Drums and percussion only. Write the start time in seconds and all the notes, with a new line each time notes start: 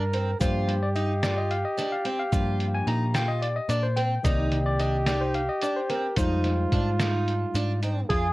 0.14 closed hi-hat
0.41 kick, closed hi-hat, shaker
0.69 closed hi-hat
0.95 closed hi-hat, shaker
1.23 snare, closed hi-hat, shaker
1.51 closed hi-hat
1.78 snare, closed hi-hat, shaker
2.05 closed hi-hat
2.33 kick, closed hi-hat, shaker
2.60 closed hi-hat
2.88 closed hi-hat
3.15 snare, closed hi-hat, shaker
3.43 closed hi-hat
3.70 closed hi-hat, shaker
3.97 closed hi-hat
4.25 kick, closed hi-hat, shaker
4.52 closed hi-hat
4.80 closed hi-hat, shaker
5.07 snare, closed hi-hat, shaker
5.34 closed hi-hat
5.61 closed hi-hat, shaker
5.89 snare, closed hi-hat
6.16 kick, closed hi-hat, shaker
6.44 snare, closed hi-hat
6.72 kick, closed hi-hat
7.00 snare, closed hi-hat, shaker
7.28 closed hi-hat
7.55 closed hi-hat, shaker
7.83 closed hi-hat, shaker
8.10 kick, closed hi-hat